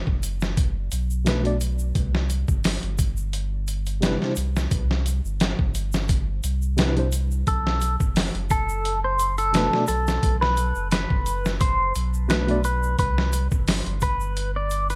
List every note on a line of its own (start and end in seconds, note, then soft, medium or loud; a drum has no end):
0.07 0.89 F#1 loud
0.07 kick medium
0.23 closed hi-hat medium
0.23 shaker medium
0.40 snare medium
0.40 shaker soft
0.57 kick loud
0.57 closed hi-hat medium
0.57 shaker soft
0.91 1.92 B1 medium
0.91 closed hi-hat medium
0.91 shaker medium
1.10 shaker soft
1.25 1.40 B2 medium
1.25 1.40 A3 medium
1.25 1.41 D4 medium
1.25 1.42 B4 loud
1.25 snare loud
1.25 closed hi-hat medium
1.25 shaker soft
1.43 1.55 B2 medium
1.43 1.55 A3 medium
1.43 1.56 D4 medium
1.43 1.57 D5 medium
1.43 closed hi-hat soft
1.61 closed hi-hat medium
1.61 shaker medium
1.79 shaker medium
1.95 2.45 C2 medium
1.95 kick medium
1.95 closed hi-hat medium
1.95 shaker soft
2.15 snare soft
2.30 closed hi-hat medium
2.30 shaker medium
2.48 2.79 G1 medium
2.48 kick medium
2.48 shaker medium
2.64 snare loud
2.64 open hi-hat medium
2.64 shaker soft
2.83 4.17 G1 loud
2.83 closed hi-hat soft
2.98 kick medium
2.98 closed hi-hat medium
2.98 shaker medium
3.17 shaker medium
3.33 closed hi-hat medium
3.33 shaker soft
3.68 closed hi-hat medium
3.68 shaker medium
3.86 closed hi-hat soft
3.86 shaker soft
4.01 4.16 C3 medium
4.01 4.16 G3 medium
4.01 4.17 D4 medium
4.01 4.17 E4 medium
4.01 4.17 B4 loud
4.01 snare loud
4.01 closed hi-hat medium
4.01 shaker soft
4.19 4.31 C3 medium
4.19 4.31 G3 medium
4.19 4.32 D4 medium
4.19 4.32 E4 medium
4.19 4.33 C5 medium
4.19 snare soft
4.36 4.68 C2 medium
4.36 closed hi-hat medium
4.36 shaker medium
4.56 snare soft
4.56 shaker medium
4.71 5.21 C2 loud
4.71 kick loud
4.71 closed hi-hat medium
4.71 shaker soft
4.91 snare soft
5.06 closed hi-hat medium
5.06 shaker medium
5.24 5.54 G1 medium
5.24 shaker soft
5.40 snare loud
5.40 closed hi-hat medium
5.40 shaker soft
5.59 6.41 G1 loud
5.59 kick medium
5.75 closed hi-hat medium
5.75 shaker medium
5.92 snare medium
5.92 shaker medium
6.08 kick loud
6.08 closed hi-hat medium
6.08 shaker soft
6.44 7.44 C2 medium
6.44 closed hi-hat medium
6.44 shaker medium
6.62 shaker soft
6.77 6.92 C3 medium
6.77 6.92 G3 medium
6.77 6.92 D4 medium
6.77 6.93 E4 medium
6.77 6.93 B4 loud
6.77 snare loud
6.77 closed hi-hat medium
6.77 shaker soft
6.95 7.07 C3 medium
6.95 7.07 G3 medium
6.95 7.07 D4 medium
6.95 7.08 E4 medium
6.95 7.09 C5 medium
6.95 closed hi-hat soft
7.12 closed hi-hat medium
7.12 shaker medium
7.31 shaker medium
7.47 7.97 B1 medium
7.47 7.95 A4 loud
7.47 kick medium
7.47 closed hi-hat medium
7.47 shaker soft
7.67 snare medium
7.81 closed hi-hat medium
7.81 shaker medium
8.00 8.30 F#1 medium
8.00 kick medium
8.00 shaker soft
8.16 snare loud
8.16 open hi-hat medium
8.16 shaker soft
8.35 9.69 F#1 loud
8.35 closed hi-hat soft
8.50 8.98 A4 medium
8.50 kick medium
8.50 closed hi-hat medium
8.50 shaker medium
8.69 shaker medium
8.85 closed hi-hat medium
8.85 shaker soft
9.04 9.35 C5 medium
9.19 closed hi-hat medium
9.19 shaker medium
9.38 9.84 A4 medium
9.38 closed hi-hat soft
9.38 shaker medium
9.52 9.67 B2 medium
9.52 9.68 A3 medium
9.52 9.69 D4 medium
9.52 9.69 B4 loud
9.52 snare loud
9.52 closed hi-hat medium
9.52 shaker soft
9.71 9.83 B2 medium
9.71 9.83 A3 medium
9.71 9.84 D4 medium
9.71 9.85 D5 medium
9.71 snare soft
9.87 10.19 B1 medium
9.87 10.36 A4 medium
9.87 closed hi-hat medium
9.87 shaker medium
10.07 snare medium
10.07 shaker medium
10.23 10.73 B1 loud
10.23 kick loud
10.23 closed hi-hat medium
10.23 shaker soft
10.41 10.87 B4 medium
10.41 snare soft
10.57 closed hi-hat medium
10.57 shaker medium
10.75 11.06 F#1 medium
10.75 shaker soft
10.91 11.55 B4 medium
10.91 snare loud
10.91 closed hi-hat medium
10.91 shaker soft
11.10 11.92 F#1 loud
11.10 kick medium
11.26 closed hi-hat medium
11.26 shaker medium
11.45 snare soft
11.45 shaker soft
11.60 11.92 C5 medium
11.60 kick loud
11.60 closed hi-hat medium
11.60 shaker soft
11.95 12.96 B1 medium
11.95 closed hi-hat medium
11.95 shaker medium
12.14 shaker soft
12.28 12.43 B2 medium
12.28 12.44 A3 medium
12.28 12.45 D4 medium
12.28 12.61 B4 medium
12.28 12.45 B4 loud
12.28 snare loud
12.28 closed hi-hat medium
12.28 shaker soft
12.47 12.58 B2 medium
12.47 12.59 A3 medium
12.47 12.60 D4 medium
12.47 12.60 D5 medium
12.47 closed hi-hat soft
12.64 12.96 B4 medium
12.64 closed hi-hat medium
12.64 shaker medium
12.83 shaker medium
12.98 13.48 C2 loud
12.98 13.47 B4 medium
12.98 kick loud
12.98 closed hi-hat medium
12.98 shaker soft
13.18 snare medium
13.33 closed hi-hat medium
13.33 shaker medium
13.51 13.82 G1 medium
13.51 kick medium
13.51 shaker soft
13.67 snare loud
13.67 open hi-hat medium
13.67 shaker soft
13.86 14.95 G1 loud
13.86 closed hi-hat soft
14.01 14.50 B4 medium
14.01 kick medium
14.01 closed hi-hat medium
14.01 shaker medium
14.20 shaker soft
14.36 closed hi-hat medium
14.36 shaker soft
14.56 14.87 D5 medium
14.70 closed hi-hat medium
14.70 shaker medium
14.90 14.95 B4 loud
14.90 closed hi-hat soft
14.90 shaker medium